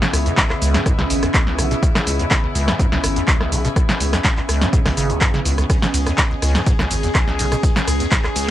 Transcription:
Already playing: string section C#3 B3 E4, ambient pad C#4 G#4 D#5
0.02 acid bass C#3, snare, shaker
0.13 acid bass C#2, sub bass C#2, cross-stick, open hi-hat, shaker
0.26 acid bass E2, closed hi-hat, shaker
0.37 acid bass C#2, kick, snare, clap, closed hi-hat, shaker
0.50 acid bass C#2, cross-stick, clap
0.62 acid bass C#2, sub bass C#2, open hi-hat, shaker
0.74 acid bass G#2, snare, closed hi-hat, shaker
0.86 sub bass C#2, acid bass G#2, kick, cross-stick, closed hi-hat, shaker
0.98 sub bass C#2, acid bass C#3, snare
1.10 sub bass G#1, acid bass C#2, open hi-hat, shaker
1.23 acid bass E2, cross-stick, closed hi-hat, shaker
1.34 acid bass C#2, kick, clap, closed hi-hat, shaker
1.47 acid bass C#2, snare
1.58 sub bass B1, acid bass E3, cross-stick, open hi-hat, shaker
1.71 acid bass B2, closed hi-hat, shaker
1.83 acid bass C#2, kick, closed hi-hat, shaker
1.95 acid bass C#3, cross-stick, snare, shaker
2.07 acid bass C#2, sub bass C#2, open hi-hat, shaker
2.19 acid bass E2, closed hi-hat, shaker
2.31 acid bass C#2, kick, cross-stick, snare, clap, closed hi-hat, shaker
2.44 acid bass C#2
2.55 sub bass C#2, acid bass C#2, open hi-hat, shaker
2.68 acid bass G#2, cross-stick, snare, closed hi-hat, shaker
2.79 sub bass C#2, acid bass G#2, kick, closed hi-hat, shaker
2.92 sub bass C#2, acid bass C#3, snare
3.04 sub bass G#1, acid bass C#2, cross-stick, open hi-hat, shaker
3.16 acid bass E2, closed hi-hat, shaker
3.28 acid bass C#2, kick, clap, closed hi-hat, shaker
3.41 acid bass C#2, cross-stick, snare
3.52 sub bass B1, acid bass E3, open hi-hat, shaker
3.65 acid bass B2, closed hi-hat, shaker
3.76 acid bass C#2, kick, cross-stick, closed hi-hat, shaker
3.89 acid bass C#3, snare, shaker
4.00 sub bass C#2, acid bass C#2, open hi-hat, shaker
4.13 acid bass E2, cross-stick, snare, closed hi-hat, shaker
4.24 acid bass C#2, kick, snare, clap, closed hi-hat, shaker
4.37 acid bass C#2, clap
4.49 acid bass C#2, sub bass C#2, cross-stick, open hi-hat, shaker
4.61 acid bass G#2, snare, closed hi-hat, shaker
4.73 sub bass C#2, acid bass G#2, kick, closed hi-hat, shaker
4.86 sub bass C#2, acid bass C#3, cross-stick, snare, open hi-hat
4.97 sub bass G#1, acid bass C#3, open hi-hat, shaker
5.10 acid bass C#2, closed hi-hat, shaker
5.21 acid bass G#2, kick, cross-stick, clap, closed hi-hat, shaker
5.34 acid bass C#3, snare
5.45 acid bass C#2, sub bass C#2, open hi-hat, shaker
5.58 acid bass C#2, cross-stick, closed hi-hat, shaker
5.70 acid bass C#2, string section G#4, kick, cross-stick, closed hi-hat, ride, shaker
5.82 acid bass C#3, snare, shaker
5.94 acid bass C#2, sub bass C#2, open hi-hat, ride, shaker
6.07 acid bass E2, cross-stick, closed hi-hat, shaker
6.18 acid bass C#2, kick, snare, clap, closed hi-hat, ride, shaker
6.31 acid bass C#2
6.42 sub bass C#2, acid bass C#2, cross-stick, open hi-hat, ride, shaker
6.55 acid bass G#2, snare, closed hi-hat, shaker
6.66 sub bass C#2, acid bass G#2, kick, closed hi-hat, ride, shaker
6.79 sub bass C#2, acid bass C#3, cross-stick, snare
6.91 sub bass G#1, acid bass C#2, open hi-hat, ride, shaker
7.03 acid bass E2, closed hi-hat, shaker
7.15 acid bass C#2, kick, cross-stick, clap, closed hi-hat, ride, shaker
7.28 acid bass C#2, snare
7.39 sub bass B1, acid bass E3, open hi-hat, ride, shaker
7.52 acid bass B2, cross-stick, closed hi-hat, shaker
7.63 acid bass C#2, kick, closed hi-hat, ride, shaker
7.76 acid bass C#3, snare, shaker
7.88 acid bass C#2, sub bass C#2, cross-stick, open hi-hat, ride, shaker
8.00 acid bass E2, closed hi-hat, shaker
8.12 acid bass C#2, kick, snare, clap, closed hi-hat, ride, shaker
8.24 acid bass C#2, cross-stick, clap
8.36 acid bass C#2, sub bass C#2, open hi-hat, ride, shaker

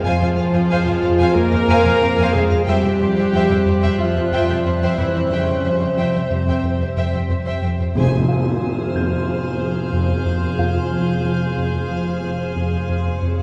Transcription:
Already playing: french horn section G#3 C5, ambient pad F4 G#4 C5, grand piano E5 G5
0.03 analog synth bass F2, double bass section F2, cello section F3, viola section F4, violin section C5 F5 G#5
0.19 double bass section F2, violin section C5 F5 G#5
0.36 double bass section F2, analog synth bass F3, violin section C5 F5
0.53 double bass section F2, violin section C5 F5 G#5
0.69 double bass section F2, analog synth bass F3, violin section C5 F5 G#5
0.85 double bass section F2, violin section C5 F5 G#5
1.01 analog synth bass F2, double bass section F2, violin section C5 F5
1.18 double bass section F2, violin section C5 F5 G#5
1.35 analog synth bass F2, cello section A#3, viola section A#4
1.51 double bass section F2, violin section C5 F5
1.67 analog synth bass F2, double bass section F2, violin section C5 F5 G#5
1.83 double bass section F2, violin section C5 F5 G#5
2.00 analog synth bass F2, double bass section F2, violin section C5 F5
2.16 double bass section F2, violin section G#5
2.20 violin section C5 F5
2.33 analog synth bass F2, double bass section F2, cello section G#3, viola section G#4, violin section C5 F5 G#5
2.50 double bass section F2, violin section C5 F5
2.65 double bass section F2, analog synth bass F2, french horn section G3 C5, cello section G3, viola section G4, ambient pad G4 C5 E5, violin section C5 E5 G5 C6 F#6
2.81 double bass section F2, violin section C5 E5 G5
2.98 double bass section F2, analog synth bass F3, violin section E5
3.02 violin section C5
3.15 double bass section F2, violin section C5 E5 G5
3.32 double bass section F2, analog synth bass F3, violin section C5 E5 G5
3.49 double bass section F2, violin section C5 E5 G5
3.66 analog synth bass F2, double bass section F2, violin section C5 E5
3.82 double bass section F2, violin section C5 E5 G5
3.98 analog synth bass F2, cello section F3, viola section F4, grand piano E5
4.15 double bass section F2, violin section C5 E5
4.32 analog synth bass F2, double bass section F2, violin section C5 E5 G5
4.49 double bass section F2, violin section C5 E5 G5
4.64 analog synth bass F2, double bass section F2, violin section C5 E5
4.82 double bass section F2, violin section C5 E5 G5
4.98 analog synth bass F2, double bass section F2, cello section E3, viola section E4, violin section C5 E5 G5
5.15 double bass section F2, violin section C5 E5
5.30 analog synth bass F2, double bass section F2, cello section C#3, viola section C#4, violin section C5 E5 G5
5.47 double bass section F2, violin section C5 E5 G5
5.64 double bass section F2, analog synth bass F3, violin section C5 E5
5.80 double bass section F2, violin section C5 E5 G5
5.86 violin section G6
5.97 double bass section F2, cello section C3, analog synth bass F3, viola section C4, violin section C5 E5 G5
6.13 double bass section F2, violin section C5 E5 G5
6.30 double bass section F2, analog synth bass F2, violin section C5 E5
6.47 double bass section F2, violin section C5 E5 G5
6.63 analog synth bass F2, grand piano C5
6.80 double bass section F2, violin section C5 E5
6.96 analog synth bass F2, double bass section F2, violin section C5 E5 G5
7.13 double bass section F2, violin section C5 E5 G5
7.29 analog synth bass F2, double bass section F2, violin section C5 E5
7.45 double bass section F2, violin section C5 E5 G5
7.62 analog synth bass F2, double bass section F2, violin section C5 E5 G5
7.79 double bass section F2, violin section C5 E5
7.93 double bass section F1, cello section F2, timpani F2, analog synth bass F2, viola section G#4, ambient pad G#4 C5 F5, violin section C5 G#5 C6, tam-tam
8.28 analog synth bass F3, grand piano F5
8.61 analog synth bass F3, violin section F6
8.94 analog synth bass F2, grand piano G#4 G6
9.26 analog synth bass F3, violin section G6
9.60 analog synth bass F3
9.93 analog synth bass F2
10.26 analog synth bass F2
10.58 analog synth bass F2, grand piano F4 F5
10.92 analog synth bass F3
11.25 analog synth bass F3
11.58 analog synth bass F2
11.91 analog synth bass F3
12.24 analog synth bass F3
12.56 analog synth bass F2
12.89 analog synth bass F2
13.22 double bass section F1, analog synth bass F2, cello section F2, viola section G#4, violin section C#5 G#5

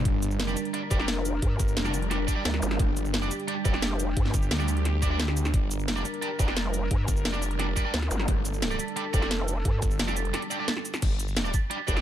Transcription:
Already playing: analog synth pad G3 D4
0.05 detuned saw bass G1, analog synth pad A#4, kick, closed hi-hat
0.23 closed hi-hat, cabasa
0.31 cabasa
0.40 snare, closed hi-hat
0.48 distorted electric guitar D4 G4 D5, cabasa
0.57 closed hi-hat, cabasa
0.65 closed hi-hat
0.74 distorted electric guitar D4 G4 D5, closed hi-hat
0.91 wobble bass F1, distorted electric guitar D4 G4 D5, kick, closed hi-hat, cabasa
0.99 distorted electric guitar D4 G4 D5, snare
1.08 snare, closed hi-hat
1.25 closed hi-hat, cabasa
1.42 wobble bass G2, kick, closed hi-hat
1.59 detuned saw bass G1, kick, closed hi-hat, cabasa
1.68 cabasa
1.77 detuned saw bass F1, snare, closed hi-hat
1.85 distorted electric guitar D4 G4 D5, snare, cabasa
1.94 closed hi-hat, cabasa
2.02 closed hi-hat
2.11 distorted electric guitar D4 G4 D5, snare, closed hi-hat
2.28 distorted electric guitar D4 G4 D5, kick, closed hi-hat, cabasa
2.36 distorted electric guitar D4 G4 D5
2.45 wobble bass D2, snare, closed hi-hat
2.54 snare
2.62 wobble bass G1, closed hi-hat, zap, cabasa
2.71 snare
2.79 detuned saw bass G1, analog synth pad G4, kick, closed hi-hat
2.97 closed hi-hat, cabasa
3.05 cabasa
3.14 snare, closed hi-hat
3.22 distorted electric guitar D4 G4 D5, cabasa
3.31 closed hi-hat, cabasa
3.40 closed hi-hat
3.48 distorted electric guitar D4 G4 D5, closed hi-hat
3.65 wobble bass F1, distorted electric guitar D4 G4 D5, kick, closed hi-hat, cabasa
3.74 distorted electric guitar D4 G4 D5, snare
3.82 snare, closed hi-hat
4.00 closed hi-hat, cabasa
4.17 wobble bass G2, kick, closed hi-hat
4.25 snare
4.34 detuned saw bass G1, kick, closed hi-hat, cabasa
4.42 cabasa
4.51 detuned saw bass D2, snare, closed hi-hat
4.59 distorted electric guitar D4 G4 D5, snare, cabasa
4.68 closed hi-hat, cabasa
4.77 closed hi-hat
4.85 snare, closed hi-hat
5.02 distorted electric guitar D4 G4 D5, kick, closed hi-hat, cabasa
5.11 distorted electric guitar D4 G4 D5
5.20 snare, closed hi-hat
5.28 snare
5.37 closed hi-hat, cabasa
5.45 snare, cabasa
5.54 detuned saw bass G1, analog synth pad A#4, kick, closed hi-hat
5.71 closed hi-hat, cabasa
5.79 cabasa
5.88 snare, closed hi-hat
5.96 distorted electric guitar D4 G4 D5, cabasa
6.05 closed hi-hat, cabasa
6.14 closed hi-hat
6.22 distorted electric guitar D4 G4 D5, closed hi-hat
6.39 wobble bass F1, distorted electric guitar D4 G4 D5, kick, closed hi-hat, cabasa
6.48 distorted electric guitar D4 G4 D5, snare
6.57 snare, closed hi-hat
6.74 closed hi-hat, cabasa
6.91 wobble bass G2, kick, closed hi-hat
7.08 detuned saw bass G1, kick, closed hi-hat, cabasa
7.17 cabasa
7.25 detuned saw bass F1, snare, closed hi-hat
7.34 distorted electric guitar D4 G4 D5, snare, cabasa
7.42 closed hi-hat, cabasa
7.51 closed hi-hat
7.59 distorted electric guitar D4 G4 D5, snare, closed hi-hat
7.76 distorted electric guitar D4 G4 D5, kick, closed hi-hat, cabasa
7.85 distorted electric guitar D4 G4 D5
7.94 wobble bass D2, snare, closed hi-hat
8.02 snare
8.11 wobble bass G1, closed hi-hat, zap, cabasa
8.19 snare
8.28 detuned saw bass G1, analog synth pad A4, kick, closed hi-hat
8.45 closed hi-hat, cabasa
8.54 cabasa
8.62 snare, closed hi-hat
8.71 distorted electric guitar D4 G4 D5, cabasa
8.79 closed hi-hat, cabasa
8.88 closed hi-hat
8.96 distorted electric guitar D4 G4 D5, closed hi-hat
9.14 wobble bass F1, distorted electric guitar D4 G4 D5, kick, closed hi-hat, cabasa
9.22 distorted electric guitar D4 G4 D5, snare
9.31 snare, closed hi-hat
9.48 closed hi-hat, cabasa
9.65 wobble bass G2, kick, closed hi-hat
9.82 detuned saw bass G1, kick, closed hi-hat, cabasa
9.91 cabasa
9.99 detuned saw bass F1, snare, closed hi-hat
10.08 distorted electric guitar D4 G4 D5, snare, cabasa
10.17 closed hi-hat, cabasa
10.25 closed hi-hat
10.34 distorted electric guitar D4 G4 D5, snare, closed hi-hat
10.42 closed hi-hat
10.51 distorted electric guitar D4 G4 D5, closed hi-hat, cabasa
10.59 distorted electric guitar D4 G4 D5
10.68 snare, closed hi-hat
10.77 snare
10.85 closed hi-hat, cabasa
10.94 snare, cabasa
11.02 detuned saw bass G1, kick, closed hi-hat, crash
11.19 closed hi-hat, cabasa
11.28 cabasa
11.37 snare, closed hi-hat
11.45 distorted electric guitar D4 G4 D5, cabasa
11.54 kick, closed hi-hat, cabasa
11.71 distorted electric guitar D4 G4 D5, closed hi-hat
11.88 wobble bass F1, distorted electric guitar D4 G4 D5, kick, closed hi-hat, cabasa
11.96 distorted electric guitar D4 G4 D5, snare

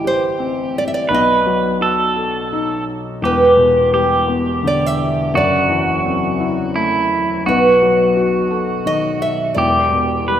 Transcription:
Already playing: felt piano A1 A2 E3 E4, pedal steel guitar G4
0.04 felt piano G4, nylon-string guitar C5
0.39 felt piano C4
0.78 nylon-string guitar D5
0.88 nylon-string guitar E5
0.94 nylon-string guitar D5
1.09 felt piano B1 B2, pedal steel guitar B4
1.14 nylon-string guitar D#5
1.46 felt piano F#3
1.81 felt piano F#4, pedal steel guitar A4
2.16 felt piano A4
2.52 felt piano D#4
3.22 felt piano E1 E2, pedal steel guitar G4, nylon-string guitar B4
3.57 felt piano B2
3.92 felt piano G3, pedal steel guitar G4
4.28 felt piano B3
4.63 felt piano D3
4.67 nylon-string guitar D5
4.86 nylon-string guitar E5
5.34 felt piano F#1 F#2, pedal steel guitar F#4, nylon-string guitar D5
5.69 felt piano E3
6.05 felt piano C4
6.40 felt piano E4
6.74 felt piano A3, pedal steel guitar E4
7.46 felt piano B1 B2, pedal steel guitar F#4, nylon-string guitar B4
7.82 felt piano F#3
8.17 felt piano F#4
8.51 felt piano A4
8.86 felt piano D#3, nylon-string guitar D#5
9.22 nylon-string guitar E5
9.54 felt piano E1 E2, pedal steel guitar G4, nylon-string guitar D5
9.92 felt piano B2
10.27 felt piano G3, pedal steel guitar B4

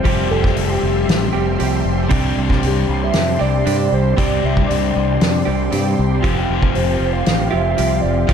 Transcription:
Already playing: analog synth pad G4 C6
0.03 fingered electric bass F1, clean electric guitar F3 G3 C4 G4, analog synth pad E5, kick, open hi-hat
0.08 soft synth lead C5
0.31 fingered electric bass F1, soft synth lead A4
0.44 kick, snare
0.55 fingered electric bass F1, soft synth lead G4, open hi-hat
0.83 fingered electric bass F1
1.08 fingered electric bass A1, snare, open hi-hat
1.33 fingered electric bass F1, clean electric guitar F3 G3 C4 G4
1.58 fingered electric bass C2, clean electric guitar F3 G3 C4 G4, open hi-hat
1.85 fingered electric bass F1
2.09 fingered electric bass C2, clean electric guitar C3 G3 C4 D4 G4, kick, open hi-hat
2.13 analog synth pad D5
2.37 fingered electric bass C2
2.50 kick, snare
2.63 fingered electric bass C2, soft synth lead G4, open hi-hat
2.89 fingered electric bass C2
3.03 soft synth lead E5
3.13 fingered electric bass F2, snare, open hi-hat
3.39 fingered electric bass C2, clean electric guitar C3 G3 C4 D4 G4, soft synth lead D5
3.64 fingered electric bass G2, clean electric guitar C3 G3 C4 D4 G4, open hi-hat
3.92 fingered electric bass C2, soft synth lead C5
4.16 fingered electric bass C2, clean electric guitar C3 G3 C4 D4 G4, soft synth lead D5, kick, open hi-hat
4.44 fingered electric bass C2, soft synth lead E5
4.57 kick
4.68 fingered electric bass C2, soft synth lead D5, open hi-hat
4.96 fingered electric bass C2
5.21 fingered electric bass F2, snare, open hi-hat
5.45 fingered electric bass C2, clean electric guitar C3 G3 C4 D4 G4
5.70 fingered electric bass G2, clean electric guitar C3 G3 C4 D4 G4, open hi-hat
5.99 fingered electric bass C2
6.21 fingered electric bass F1, clean electric guitar F3 C4 F4 G4, analog synth pad F4, kick, open hi-hat
6.50 fingered electric bass F1
6.62 kick
6.74 fingered electric bass F1, soft synth lead C5, open hi-hat
7.00 fingered electric bass F1
7.13 soft synth lead F5
7.26 fingered electric bass A1, snare, open hi-hat
7.49 clean electric guitar C4 F4 G4, soft synth lead E5
7.53 fingered electric bass F1, clean electric guitar F3
7.77 fingered electric bass C2, clean electric guitar F3 C4 F4 G4, open hi-hat
8.01 fingered electric bass F1, soft synth lead D5
8.28 fingered electric bass F1, clean electric guitar F3 C4 F4 G4, kick, open hi-hat

